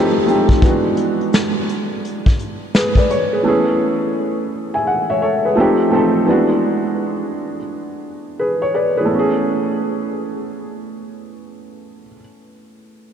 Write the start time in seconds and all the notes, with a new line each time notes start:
Already playing: F3 A3 C4 D#4 E4 G4 G#4
0.25 F3 A3 C4 D#4, closed hi-hat
0.30 G4
0.49 kick
0.61 E3 G3 B3 D4, kick, closed hi-hat
0.65 G#3 F#4
0.97 closed hi-hat
1.21 closed hi-hat
1.33 snare, closed hi-hat
1.69 closed hi-hat
2.05 closed hi-hat
2.26 kick
2.39 closed hi-hat
2.74 G#4 B4, snare, closed hi-hat
2.95 B4 D5, kick
3.10 C#5, closed hi-hat
3.33 G#4 B4
3.43 E3 A3 B3 C#4
3.48 G#4
4.74 E5 G#5
4.87 F#5
5.10 C#5 E5
5.22 A4 C#5
5.45 G#4 B4
5.55 F3 A3 C4 D#4
5.60 G4
5.90 F3 A3 C4 D#4
5.95 A4
6.26 E3 G#3 B3 D4
6.30 F#4
8.39 G#4 B4
8.62 C#5
8.74 B4 D5
8.97 E3 G#4 B4
9.05 A3
9.10 B3
9.14 C#4
9.19 G#4